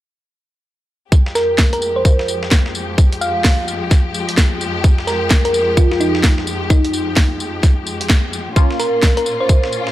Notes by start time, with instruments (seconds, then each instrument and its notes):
1.12 string section F2 F3 G#3 G4, kick, tambourine
1.26 snare
1.35 synth pluck A#4, snare, tambourine
1.58 kick, snare, tambourine
1.73 synth pluck A#4, closed hi-hat
1.82 tambourine
1.96 synth pluck C5
2.05 kick, tambourine
2.19 snare
2.28 tambourine
2.43 snare
2.51 kick, snare, tambourine
2.66 snare
2.75 tambourine
2.98 kick, tambourine
3.13 closed hi-hat
3.21 synth pluck F5, tambourine
3.44 kick, snare, open hi-hat
3.68 tambourine
3.91 kick, snare, tambourine
4.14 tambourine
4.29 closed hi-hat
4.37 kick, snare, tambourine
4.61 tambourine
4.84 kick, tambourine
4.99 snare
5.07 synth pluck A#4, snare, tambourine
5.30 kick, snare, tambourine
5.45 synth pluck A#4, closed hi-hat
5.54 tambourine
5.77 synth pluck F4, kick, tambourine
5.91 synth pluck F4, snare
6.00 synth pluck D#4, tambourine
6.15 snare
6.24 kick, snare, tambourine
6.38 snare
6.47 tambourine
6.70 synth pluck D#4, kick, tambourine
6.85 closed hi-hat
6.93 tambourine
7.17 kick, snare, open hi-hat
7.40 tambourine
7.63 kick, snare, tambourine
7.87 tambourine
8.01 closed hi-hat
8.10 kick, snare, tambourine
8.33 tambourine
8.56 string section A#2 A#3 C#4 F4, synth stab A#3 C#4 F4, kick, tambourine
8.71 snare
8.79 synth pluck A#4, snare, tambourine
9.03 kick, snare, tambourine
9.17 synth pluck A#4, closed hi-hat
9.26 tambourine
9.40 synth pluck C5
9.49 kick, tambourine
9.64 snare
9.73 tambourine
9.87 snare